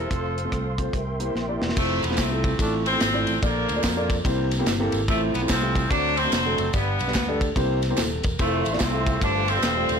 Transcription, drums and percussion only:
0.11 kick, closed hi-hat
0.38 closed hi-hat
0.52 kick, cross-stick, closed hi-hat
0.78 kick, closed hi-hat
0.93 kick, closed hi-hat
1.20 closed hi-hat
1.36 snare
1.62 snare
1.69 snare
1.76 kick, crash, tambourine
2.03 ride bell, tambourine
2.11 snare
2.17 kick, snare, clap, ride bell, tambourine
2.44 kick, ride bell, tambourine
2.59 kick, ride bell, tambourine
2.86 ride bell, tambourine
3.00 snare, clap, ride bell, tambourine
3.27 ride bell, tambourine
3.42 kick, ride bell, tambourine
3.68 ride bell, tambourine
3.83 kick, snare, clap, ride bell, tambourine
4.10 kick, ride bell, tambourine
4.25 kick, ride bell, tambourine
4.51 snare, ride bell, tambourine
4.66 snare, clap, ride bell, tambourine
4.92 ride bell, tambourine
5.08 kick, ride bell, tambourine
5.34 ride bell, tambourine
5.49 kick, snare, clap, ride bell, tambourine
5.75 kick, ride bell, tambourine
5.91 kick, ride bell, tambourine
6.17 ride bell, tambourine
6.32 snare, clap, ride bell, tambourine
6.58 ride bell, tambourine
6.73 kick, ride bell, tambourine
6.99 ride bell, tambourine
7.08 snare
7.14 kick, snare, clap, ride bell, tambourine
7.41 kick, ride bell, tambourine
7.56 kick, ride bell, tambourine
7.82 snare, ride bell, tambourine
7.97 snare, clap, ride bell, tambourine
8.23 kick, ride bell, tambourine
8.39 kick, ride bell, tambourine
8.65 ride bell, tambourine
8.73 snare
8.80 kick, snare, clap, ride bell, tambourine
9.06 kick, ride bell, tambourine
9.21 kick, ride bell, tambourine
9.48 ride bell, tambourine
9.63 snare, clap, ride bell, tambourine
9.89 ride bell, tambourine

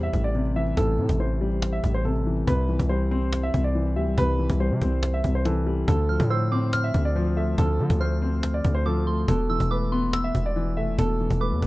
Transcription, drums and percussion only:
0.13 cajon bass
0.35 cajon slap
0.45 cajon slap
0.67 cajon slap
0.77 cajon bass
0.98 cajon slap
1.09 cajon bass
1.52 cajon slap
1.62 cajon slap
1.84 cajon bass
2.05 cajon slap
2.16 cajon slap
2.37 cajon slap
2.47 cajon bass
2.69 cajon slap
2.79 cajon bass
3.11 cajon slap
3.22 cajon slap
3.33 cajon slap
3.54 cajon bass
3.75 cajon slap
3.86 cajon slap
4.07 cajon slap
4.18 cajon bass
4.39 cajon slap
4.50 cajon bass
4.82 cajon bass
4.92 cajon slap
5.03 cajon slap
5.13 cajon slap
5.24 cajon bass
5.45 cajon slap
5.77 cajon slap
5.84 cajon bass, cajon slap
6.09 cajon slap
6.20 cajon bass
6.52 cajon slap
6.62 cajon slap
6.73 cajon slap
6.94 cajon bass
7.16 cajon slap
7.26 cajon slap
7.47 cajon slap
7.58 cajon bass
7.69 cajon slap
7.79 cajon slap
7.90 cajon bass
8.33 cajon slap
8.43 cajon slap
8.64 cajon bass
8.86 cajon slap
8.96 cajon slap
9.18 cajon slap
9.28 cajon bass
9.50 cajon slap
9.60 cajon bass
9.92 cajon slap
10.03 cajon slap
10.13 cajon slap
10.35 cajon bass
10.45 cajon slap
10.56 cajon slap
10.67 cajon slap
10.88 cajon slap
10.99 cajon bass
11.20 cajon slap
11.30 cajon bass
11.62 cajon bass

